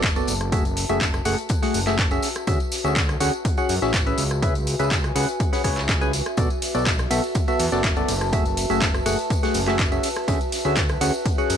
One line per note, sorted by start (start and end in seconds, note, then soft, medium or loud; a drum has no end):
0.00 0.24 F#1 medium
0.00 4.17 F#4 medium
0.00 4.18 B4 medium
0.00 4.18 E5 medium
0.00 4.18 A5 medium
0.00 kick loud
0.00 snare loud
0.00 closed hi-hat loud
0.00 closed hi-hat medium
0.00 tambourine medium
0.04 clap loud
0.16 0.33 B3 medium
0.16 0.33 F#4 medium
0.16 0.33 A4 medium
0.16 0.33 D5 medium
0.16 closed hi-hat soft
0.16 tambourine soft
0.27 0.85 F#1 loud
0.27 closed hi-hat medium
0.27 open hi-hat loud
0.27 tambourine loud
0.41 cross-stick medium
0.41 closed hi-hat soft
0.41 tambourine soft
0.52 0.64 A3 medium
0.52 0.64 F#4 medium
0.52 0.64 G#4 medium
0.52 0.64 E5 loud
0.52 kick loud
0.52 closed hi-hat medium
0.52 closed hi-hat loud
0.52 tambourine soft
0.65 closed hi-hat soft
0.65 tambourine soft
0.77 closed hi-hat medium
0.77 open hi-hat loud
0.77 tambourine medium
0.89 1.22 F#1 medium
0.89 1.07 A3 medium
0.89 1.07 F#4 medium
0.89 1.07 G#4 medium
0.89 1.07 E5 medium
0.89 closed hi-hat soft
0.89 tambourine soft
1.01 kick loud
1.01 snare loud
1.01 clap loud
1.01 closed hi-hat loud
1.01 tambourine medium
1.14 cross-stick medium
1.14 closed hi-hat soft
1.14 tambourine soft
1.25 1.36 F#1 loud
1.25 1.37 A3 loud
1.25 1.37 F#4 medium
1.25 1.37 G#4 medium
1.25 1.37 F#5 loud
1.25 open hi-hat medium
1.25 open hi-hat loud
1.25 tambourine loud
1.38 closed hi-hat soft
1.38 tambourine soft
1.49 kick loud
1.49 closed hi-hat medium
1.49 closed hi-hat loud
1.49 tambourine medium
1.62 1.80 A3 loud
1.62 1.80 F#4 medium
1.62 1.80 G#4 medium
1.62 1.80 F#5 loud
1.62 snare medium
1.62 open hi-hat medium
1.62 tambourine soft
1.74 2.19 F#1 medium
1.74 closed hi-hat medium
1.74 open hi-hat loud
1.74 tambourine loud
1.87 1.97 A3 medium
1.87 1.97 F#4 medium
1.87 1.97 G#4 medium
1.87 1.97 E5 medium
1.87 snare medium
1.87 clap soft
1.87 tambourine soft
1.98 kick loud
1.98 snare loud
1.98 clap loud
1.98 closed hi-hat loud
1.98 closed hi-hat medium
1.98 tambourine medium
2.11 2.29 C#4 medium
2.11 2.29 F#4 medium
2.11 2.29 G#4 medium
2.11 2.28 E5 medium
2.11 closed hi-hat soft
2.11 tambourine soft
2.22 snare medium
2.22 closed hi-hat medium
2.22 open hi-hat loud
2.22 tambourine medium
2.35 cross-stick medium
2.35 closed hi-hat soft
2.35 tambourine soft
2.47 2.58 D2 loud
2.47 2.59 C#4 medium
2.47 2.59 F#4 medium
2.47 2.59 G#4 medium
2.47 2.59 E5 loud
2.47 kick loud
2.47 closed hi-hat medium
2.47 tambourine soft
2.60 closed hi-hat soft
2.60 tambourine soft
2.72 snare soft
2.72 closed hi-hat medium
2.72 open hi-hat loud
2.72 tambourine loud
2.85 3.17 D2 medium
2.85 3.02 C#4 medium
2.85 3.02 F#4 medium
2.85 3.02 G#4 medium
2.85 3.02 E5 medium
2.85 closed hi-hat soft
2.85 tambourine soft
2.96 kick loud
2.96 snare loud
2.96 clap loud
2.96 closed hi-hat loud
2.96 closed hi-hat medium
2.96 tambourine medium
3.09 cross-stick medium
3.09 closed hi-hat soft
3.09 tambourine soft
3.20 3.31 D2 loud
3.20 3.32 C#4 loud
3.20 3.32 F#4 loud
3.20 3.32 G#4 medium
3.20 3.32 F#5 loud
3.20 closed hi-hat medium
3.20 open hi-hat loud
3.20 tambourine loud
3.33 closed hi-hat soft
3.33 tambourine soft
3.45 kick loud
3.45 closed hi-hat medium
3.45 tambourine medium
3.57 3.75 C#4 medium
3.57 3.75 F#4 medium
3.57 3.75 G#4 medium
3.57 3.75 F#5 loud
3.57 closed hi-hat soft
3.57 tambourine soft
3.69 3.80 F#2 loud
3.69 closed hi-hat medium
3.69 open hi-hat loud
3.69 tambourine medium
3.82 4.14 A1 medium
3.82 3.93 C#4 medium
3.82 3.93 F#4 medium
3.82 3.93 G#4 medium
3.82 3.93 E5 medium
3.82 snare medium
3.82 closed hi-hat soft
3.82 tambourine soft
3.93 kick loud
3.93 snare loud
3.93 clap loud
3.93 closed hi-hat medium
3.93 tambourine medium
4.06 4.24 C#4 medium
4.06 4.24 G#4 medium
4.06 4.24 B4 medium
4.06 4.24 E5 medium
4.06 closed hi-hat soft
4.06 tambourine soft
4.18 4.76 C#2 loud
4.18 11.57 F#4 medium
4.18 closed hi-hat medium
4.18 open hi-hat loud
4.18 tambourine loud
4.31 cross-stick medium
4.31 closed hi-hat soft
4.31 tambourine soft
4.42 4.54 C#4 medium
4.42 4.54 G#4 medium
4.42 4.54 B4 medium
4.42 11.57 B4 medium
4.42 4.54 E5 loud
4.42 6.38 G#5 medium
4.42 kick loud
4.42 closed hi-hat medium
4.42 tambourine medium
4.55 closed hi-hat soft
4.55 tambourine soft
4.61 11.57 E5 medium
4.67 closed hi-hat medium
4.67 open hi-hat loud
4.67 tambourine medium
4.79 5.12 C#2 medium
4.79 4.97 C#4 medium
4.79 4.97 G#4 medium
4.79 4.97 B4 medium
4.79 4.97 E5 medium
4.79 closed hi-hat soft
4.79 tambourine soft
4.91 kick loud
4.91 snare loud
4.91 clap loud
4.91 closed hi-hat medium
4.91 tambourine medium
5.04 cross-stick medium
5.04 closed hi-hat soft
5.04 tambourine soft
5.16 5.26 C#2 loud
5.16 5.27 C#4 loud
5.16 5.27 G#4 medium
5.16 5.27 B4 medium
5.16 5.27 F#5 loud
5.16 open hi-hat medium
5.16 open hi-hat loud
5.16 tambourine loud
5.28 closed hi-hat soft
5.28 tambourine soft
5.40 kick loud
5.40 closed hi-hat medium
5.40 tambourine medium
5.53 5.62 C#4 medium
5.53 5.62 G#4 medium
5.53 5.62 B4 medium
5.53 5.62 F#5 loud
5.53 snare medium
5.53 open hi-hat medium
5.53 tambourine soft
5.64 6.22 C#2 medium
5.64 5.82 C#4 medium
5.64 5.82 G#4 medium
5.64 5.82 B4 medium
5.64 5.82 C#5 loud
5.64 kick medium
5.64 closed hi-hat medium
5.64 open hi-hat loud
5.64 tambourine medium
5.77 snare medium
5.77 clap soft
5.77 tambourine soft
5.88 kick loud
5.88 snare loud
5.88 clap loud
5.88 closed hi-hat medium
5.88 tambourine medium
6.01 6.12 C#4 medium
6.01 6.12 G#4 medium
6.01 6.12 B4 medium
6.01 6.12 G#5 loud
6.01 closed hi-hat soft
6.01 tambourine soft
6.13 snare medium
6.13 closed hi-hat medium
6.13 open hi-hat loud
6.13 tambourine loud
6.26 cross-stick medium
6.26 closed hi-hat soft
6.26 tambourine soft
6.37 6.48 B1 loud
6.37 6.49 B3 medium
6.37 6.49 F#4 medium
6.37 6.49 A4 medium
6.37 6.49 D5 loud
6.37 kick loud
6.37 closed hi-hat medium
6.37 tambourine soft
6.50 closed hi-hat soft
6.50 tambourine soft
6.62 snare soft
6.62 closed hi-hat medium
6.62 open hi-hat loud
6.62 ride medium
6.62 tambourine medium
6.75 7.07 B1 medium
6.75 6.92 B3 medium
6.75 6.92 F#4 medium
6.75 6.92 A4 medium
6.75 6.92 D5 medium
6.75 closed hi-hat soft
6.75 tambourine soft
6.86 kick loud
6.86 snare loud
6.86 clap loud
6.86 closed hi-hat medium
6.86 closed hi-hat loud
6.86 tambourine medium
6.99 cross-stick medium
6.99 closed hi-hat soft
6.99 tambourine soft
7.11 7.21 B1 loud
7.11 7.22 B3 loud
7.11 7.22 F#4 medium
7.11 7.22 A4 medium
7.11 7.22 E5 loud
7.11 11.57 A5 medium
7.11 closed hi-hat medium
7.11 open hi-hat loud
7.11 ride medium
7.11 tambourine loud
7.24 closed hi-hat soft
7.24 tambourine soft
7.35 kick loud
7.35 closed hi-hat medium
7.35 tambourine soft
7.48 7.65 B3 loud
7.48 7.65 F#4 medium
7.48 7.65 A4 medium
7.48 7.65 E5 loud
7.48 closed hi-hat soft
7.48 tambourine soft
7.59 7.70 E2 medium
7.59 closed hi-hat medium
7.59 open hi-hat loud
7.59 ride medium
7.59 tambourine medium
7.72 8.05 F#1 medium
7.72 7.83 B3 medium
7.72 7.83 F#4 medium
7.72 7.83 A4 medium
7.72 7.83 D5 medium
7.72 snare medium
7.72 closed hi-hat soft
7.72 tambourine soft
7.84 kick loud
7.84 snare loud
7.84 clap loud
7.84 closed hi-hat medium
7.84 tambourine medium
7.96 8.14 B3 medium
7.96 8.14 F#4 medium
7.96 8.14 A4 medium
7.96 8.14 D5 medium
7.96 closed hi-hat soft
7.96 tambourine soft
8.08 8.66 F#1 loud
8.08 closed hi-hat medium
8.08 open hi-hat loud
8.08 ride medium
8.08 tambourine medium
8.21 cross-stick medium
8.21 closed hi-hat soft
8.21 tambourine soft
8.33 8.44 A3 medium
8.33 8.44 F#4 medium
8.33 8.44 G#4 medium
8.33 8.44 E5 loud
8.33 kick loud
8.33 closed hi-hat medium
8.33 tambourine soft
8.45 closed hi-hat soft
8.45 tambourine soft
8.57 closed hi-hat medium
8.57 open hi-hat loud
8.57 ride medium
8.57 tambourine medium
8.70 9.02 F#1 medium
8.70 8.87 A3 medium
8.70 8.87 F#4 medium
8.70 8.87 G#4 medium
8.70 8.87 E5 medium
8.70 closed hi-hat soft
8.70 tambourine soft
8.82 kick loud
8.82 snare loud
8.82 clap loud
8.82 closed hi-hat loud
8.82 closed hi-hat medium
8.82 tambourine soft
8.94 cross-stick medium
8.94 closed hi-hat soft
8.94 tambourine soft
9.06 9.16 F#1 loud
9.06 9.17 A3 loud
9.06 9.17 F#4 medium
9.06 9.17 G#4 loud
9.06 9.17 F#5 loud
9.06 open hi-hat loud
9.06 ride medium
9.06 tambourine medium
9.19 closed hi-hat soft
9.19 tambourine soft
9.30 kick loud
9.30 closed hi-hat medium
9.30 tambourine medium
9.43 9.60 A3 medium
9.43 9.60 F#4 medium
9.43 9.60 G#4 medium
9.43 9.60 F#5 loud
9.43 snare medium
9.43 open hi-hat medium
9.43 tambourine soft
9.54 10.00 F#1 medium
9.54 closed hi-hat medium
9.54 open hi-hat loud
9.54 ride medium
9.54 tambourine medium
9.67 9.78 A3 medium
9.67 9.78 F#4 medium
9.67 9.78 G#4 medium
9.67 9.78 E5 medium
9.67 snare medium
9.67 clap soft
9.67 closed hi-hat soft
9.67 tambourine soft
9.79 kick loud
9.79 snare loud
9.79 clap loud
9.79 closed hi-hat loud
9.79 tambourine medium
9.92 10.09 C#4 medium
9.92 10.09 F#4 medium
9.92 10.09 G#4 medium
9.92 10.09 E5 medium
9.92 closed hi-hat soft
9.92 tambourine soft
10.03 snare medium
10.03 closed hi-hat medium
10.03 open hi-hat loud
10.03 ride medium
10.03 tambourine loud
10.16 cross-stick medium
10.16 closed hi-hat soft
10.16 tambourine soft
10.28 10.38 D2 loud
10.28 10.39 C#4 medium
10.28 10.39 F#4 medium
10.28 10.39 G#4 medium
10.28 10.39 E5 loud
10.28 kick loud
10.28 closed hi-hat medium
10.28 tambourine medium
10.41 closed hi-hat soft
10.41 tambourine soft
10.52 snare medium
10.52 closed hi-hat medium
10.52 open hi-hat loud
10.52 ride medium
10.52 tambourine medium
10.65 10.97 D2 medium
10.65 10.82 C#4 medium
10.65 10.82 F#4 medium
10.65 10.82 G#4 medium
10.65 10.82 E5 medium
10.65 closed hi-hat soft
10.65 tambourine soft
10.76 kick loud
10.76 snare loud
10.76 clap loud
10.76 closed hi-hat medium
10.76 closed hi-hat loud
10.76 tambourine soft
10.89 cross-stick medium
10.89 closed hi-hat soft
10.89 tambourine soft
11.01 11.11 D2 loud
11.01 11.12 C#4 loud
11.01 11.12 F#4 medium
11.01 11.12 G#4 medium
11.01 11.12 F#5 loud
11.01 closed hi-hat medium
11.01 open hi-hat loud
11.01 ride medium
11.01 tambourine medium
11.14 closed hi-hat soft
11.14 tambourine soft
11.25 kick loud
11.25 closed hi-hat loud
11.25 closed hi-hat medium
11.25 tambourine medium
11.38 11.55 C#4 loud
11.38 11.55 F#4 medium
11.38 11.55 G#4 medium
11.38 11.55 F#5 loud
11.38 closed hi-hat soft
11.38 tambourine soft
11.50 11.57 F#2 medium
11.50 closed hi-hat medium
11.50 open hi-hat loud
11.50 ride medium
11.50 tambourine medium